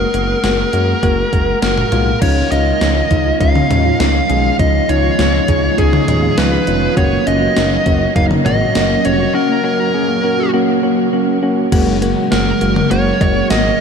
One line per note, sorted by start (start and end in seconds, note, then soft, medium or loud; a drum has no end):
0.00 1.58 A#4 medium
0.14 0.35 F#1 medium
0.14 0.39 G#3 medium
0.14 0.39 A#3 medium
0.14 0.39 F#4 medium
0.14 closed hi-hat medium
0.44 0.64 F#1 loud
0.44 0.69 G#3 medium
0.44 0.69 A#3 medium
0.44 0.69 F#4 medium
0.44 snare loud
0.44 closed hi-hat medium
0.73 0.94 F#2 loud
0.73 0.98 G#3 medium
0.73 0.98 A#3 medium
0.73 0.98 F#4 medium
0.73 closed hi-hat medium
1.03 1.24 F#1 loud
1.03 1.28 G#3 loud
1.03 1.28 A#3 loud
1.03 1.28 F#4 loud
1.03 kick medium
1.03 closed hi-hat medium
1.33 1.54 F#1 loud
1.33 1.58 G#3 medium
1.33 1.58 A#3 medium
1.33 1.58 F#4 medium
1.33 kick medium
1.33 closed hi-hat medium
1.62 1.83 F#1 loud
1.62 1.87 G#3 medium
1.62 1.87 A#3 medium
1.62 1.87 F#4 medium
1.62 2.18 A#4 medium
1.62 snare loud
1.62 closed hi-hat medium
1.78 mid tom medium
1.92 2.13 B1 loud
1.92 2.17 G#3 medium
1.92 2.17 A#3 medium
1.92 2.17 F4 medium
1.92 closed hi-hat medium
1.92 mid tom medium
2.22 2.43 C#2 loud
2.22 6.93 D#3 medium
2.22 2.33 F3 medium
2.22 6.93 F3 medium
2.22 6.93 G#3 medium
2.22 2.47 C#4 medium
2.22 4.57 C#4 medium
2.22 2.47 D#4 medium
2.22 2.47 F4 loud
2.22 6.93 F4 medium
2.22 2.51 C#5 loud
2.22 kick loud
2.22 closed hi-hat medium
2.22 crash medium
2.37 2.48 C#4 medium
2.51 2.72 C#2 loud
2.51 2.77 C#4 medium
2.51 2.63 D#4 medium
2.51 2.77 D#4 medium
2.51 2.77 F4 medium
2.51 3.37 D#5 loud
2.51 closed hi-hat medium
2.66 2.77 F4 medium
2.81 3.02 C#2 loud
2.81 2.92 F3 medium
2.81 3.06 C#4 medium
2.81 3.06 D#4 medium
2.81 3.06 F4 medium
2.81 snare loud
2.81 closed hi-hat medium
2.96 3.07 C#4 medium
3.11 3.32 C#2 loud
3.11 3.36 C#4 medium
3.11 3.36 D#4 medium
3.11 3.22 D#4 medium
3.11 3.36 F4 medium
3.11 kick medium
3.11 closed hi-hat medium
3.26 3.37 F4 medium
3.41 3.61 C#2 loud
3.41 3.52 F3 medium
3.41 3.66 C#4 medium
3.41 3.66 D#4 medium
3.41 3.66 F4 loud
3.41 3.99 F5 loud
3.41 kick medium
3.41 closed hi-hat medium
3.55 3.66 C#4 medium
3.55 mid tom loud
3.70 3.91 D#2 medium
3.70 3.95 C#4 medium
3.70 3.81 D#4 medium
3.70 3.95 D#4 medium
3.70 3.95 F4 medium
3.70 closed hi-hat medium
3.70 mid tom medium
3.85 3.96 F4 medium
4.00 4.21 C#2 loud
4.00 4.11 F3 medium
4.00 4.25 C#4 medium
4.00 4.25 D#4 medium
4.00 4.25 F4 medium
4.00 4.55 F5 loud
4.00 snare loud
4.00 closed hi-hat medium
4.15 4.26 C#4 medium
4.30 4.51 B1 loud
4.30 4.55 C#4 medium
4.30 4.55 D#4 medium
4.30 4.41 D#4 medium
4.30 4.55 G#4 medium
4.30 closed hi-hat medium
4.45 4.56 F4 medium
4.59 4.80 C#2 loud
4.59 4.70 F3 medium
4.59 6.95 B3 medium
4.59 4.84 C#4 medium
4.59 4.84 D#4 medium
4.59 4.84 F4 loud
4.59 4.90 D#5 loud
4.59 kick loud
4.59 closed hi-hat medium
4.74 4.85 C#4 medium
4.89 5.10 C#2 medium
4.89 5.14 C#4 medium
4.89 5.00 D#4 medium
4.89 5.14 D#4 medium
4.89 5.14 F4 medium
4.89 5.81 C#5 loud
4.89 closed hi-hat medium
5.04 5.15 F4 medium
5.19 5.40 C#2 loud
5.19 5.30 F3 medium
5.19 5.44 C#4 medium
5.19 5.44 D#4 medium
5.19 5.44 F4 medium
5.19 snare loud
5.19 closed hi-hat medium
5.34 5.45 C#4 medium
5.48 5.69 C#2 loud
5.48 5.74 C#4 medium
5.48 5.60 D#4 medium
5.48 5.74 D#4 medium
5.48 5.74 G#4 medium
5.48 kick loud
5.48 closed hi-hat medium
5.63 5.74 F4 medium
5.78 5.99 C#2 loud
5.78 5.89 F3 medium
5.78 6.03 C#4 medium
5.78 6.03 D#4 medium
5.78 6.03 G#4 loud
5.78 6.39 G#4 medium
5.78 kick medium
5.78 closed hi-hat medium
5.93 6.04 C#4 medium
5.93 mid tom loud
6.08 6.29 D#2 medium
6.08 6.33 C#4 medium
6.08 6.19 D#4 medium
6.08 6.33 D#4 medium
6.08 6.33 G#4 medium
6.08 closed hi-hat medium
6.08 mid tom medium
6.23 6.34 F4 medium
6.38 6.58 C#2 loud
6.38 6.49 F3 medium
6.38 6.63 C#4 medium
6.38 6.63 D#4 medium
6.38 6.63 F4 medium
6.38 6.93 B4 medium
6.38 snare loud
6.38 closed hi-hat medium
6.52 6.63 C#4 medium
6.67 6.88 F1 loud
6.67 6.92 C#4 medium
6.67 6.78 D#4 medium
6.67 6.92 D#4 medium
6.67 6.92 F4 medium
6.67 closed hi-hat medium
6.82 6.93 F4 medium
6.97 7.18 F#1 loud
6.97 7.08 F#3 loud
6.97 11.68 F#3 medium
6.97 7.22 A#3 loud
6.97 11.68 A#3 medium
6.97 7.22 C#4 medium
6.97 11.68 C#4 medium
6.97 7.22 F#4 loud
6.97 7.28 C#5 loud
6.97 kick loud
6.97 closed hi-hat medium
7.12 7.23 A#3 medium
7.27 7.48 F#1 loud
7.27 7.52 A#3 medium
7.27 7.38 C#4 medium
7.27 7.52 C#4 medium
7.27 7.52 F4 medium
7.27 8.16 D#5 loud
7.27 closed hi-hat medium
7.42 7.53 F#4 medium
7.56 7.77 F#1 loud
7.56 7.67 F#3 medium
7.56 7.82 A#3 medium
7.56 7.82 C#4 medium
7.56 7.82 D#4 medium
7.56 snare loud
7.56 closed hi-hat medium
7.71 7.82 A#3 medium
7.86 8.07 F#1 loud
7.86 8.11 A#3 medium
7.86 7.97 C#4 medium
7.86 8.11 C#4 medium
7.86 8.11 F#4 medium
7.86 kick medium
7.86 closed hi-hat medium
8.01 8.12 F#4 medium
8.16 8.37 F#1 loud
8.16 8.27 F#3 medium
8.16 8.41 A#3 loud
8.16 8.41 C#4 medium
8.16 8.41 D#4 loud
8.16 8.24 F5 loud
8.16 kick medium
8.16 closed hi-hat medium
8.31 8.42 A#3 medium
8.31 mid tom loud
8.46 8.66 G#1 loud
8.46 8.71 A#3 medium
8.46 8.57 C#4 medium
8.46 8.71 C#4 medium
8.46 8.71 F#4 medium
8.46 9.07 D#5 loud
8.46 closed hi-hat medium
8.46 mid tom medium
8.60 8.71 F#4 medium
8.75 8.96 F#1 loud
8.75 8.86 F#3 medium
8.75 9.00 A#3 medium
8.75 9.00 C#4 medium
8.75 9.00 F#4 medium
8.75 snare loud
8.75 closed hi-hat medium
8.90 9.01 A#3 medium
9.05 9.26 F1 medium
9.05 9.30 A#3 medium
9.05 9.16 C#4 medium
9.05 9.30 C#4 medium
9.05 9.30 F#4 medium
9.05 9.33 C#5 medium
9.05 closed hi-hat medium
9.20 9.31 F#4 medium
9.35 9.46 F#3 medium
9.35 9.60 A#3 loud
9.35 9.60 C#4 medium
9.35 9.60 F#4 loud
9.35 9.62 A#4 medium
9.49 9.61 A#3 medium
9.64 9.89 A#3 medium
9.64 9.75 C#4 medium
9.64 9.89 C#4 medium
9.64 9.89 F#4 medium
9.64 10.50 A#4 medium
9.79 9.90 F#4 medium
9.94 10.05 F#3 medium
9.94 10.19 A#3 medium
9.94 10.19 C#4 medium
9.94 10.19 G#4 medium
10.09 10.20 A#3 medium
10.24 10.49 A#3 medium
10.24 10.35 C#4 medium
10.24 10.49 C#4 medium
10.24 10.49 F#4 medium
10.39 10.50 F#4 medium
10.53 10.64 F#3 medium
10.53 10.79 A#3 loud
10.53 10.79 C#4 loud
10.53 10.79 F#4 loud
10.68 10.79 A#3 medium
10.83 11.08 A#3 medium
10.83 10.94 C#4 medium
10.83 11.08 C#4 medium
10.83 11.08 F#4 loud
10.98 11.09 F#4 medium
11.13 11.24 F#3 medium
11.13 11.38 A#3 medium
11.13 11.38 C#4 medium
11.13 11.38 F#4 loud
11.28 11.39 A#3 medium
11.43 11.68 A#3 medium
11.43 11.54 C#4 medium
11.43 11.68 C#4 medium
11.43 11.68 F#4 loud
11.57 11.68 F#4 medium
11.72 12.14 F#1 loud
11.72 13.80 C#3 medium
11.72 11.83 F#3 medium
11.72 13.80 F#3 medium
11.72 11.97 G#3 loud
11.72 13.80 G#3 medium
11.72 11.97 A#3 loud
11.72 13.80 A#3 medium
11.72 11.97 F#4 loud
11.72 13.80 F#4 medium
11.72 kick loud
11.72 closed hi-hat medium
11.72 crash loud
11.87 11.98 G#3 medium
12.02 12.27 G#3 medium
12.02 12.13 A#3 medium
12.02 12.27 A#3 medium
12.02 12.27 F#4 loud
12.02 closed hi-hat medium
12.17 12.28 F#4 medium
12.32 12.53 F#1 loud
12.32 12.43 F#3 medium
12.32 12.57 G#3 medium
12.32 12.57 A#3 medium
12.32 12.57 F#4 medium
12.32 12.91 A#4 medium
12.32 snare loud
12.32 closed hi-hat medium
12.47 12.58 G#3 medium
12.61 12.82 F#1 loud
12.61 12.86 G#3 medium
12.61 12.72 A#3 medium
12.61 12.86 A#3 medium
12.61 12.86 F#4 medium
12.61 closed hi-hat medium
12.76 12.87 F#4 medium
12.76 mid tom loud
12.91 13.12 F#1 loud
12.91 13.02 F#3 medium
12.91 13.16 G#3 medium
12.91 13.16 A#3 medium
12.91 13.16 F#4 loud
12.91 13.47 C#5 medium
12.91 closed hi-hat medium
13.06 13.17 G#3 medium
13.21 13.42 F#1 loud
13.21 13.46 G#3 medium
13.21 13.32 A#3 medium
13.21 13.46 A#3 medium
13.21 13.46 F#4 medium
13.21 kick medium
13.21 closed hi-hat medium
13.21 cowbell medium
13.36 13.47 F#4 medium
13.50 13.71 G#1 loud
13.50 13.62 F#3 medium
13.50 13.76 G#3 medium
13.50 13.76 A#3 medium
13.50 13.76 F#4 medium
13.50 13.80 D#5 medium
13.50 snare loud
13.50 closed hi-hat medium
13.65 13.76 G#3 medium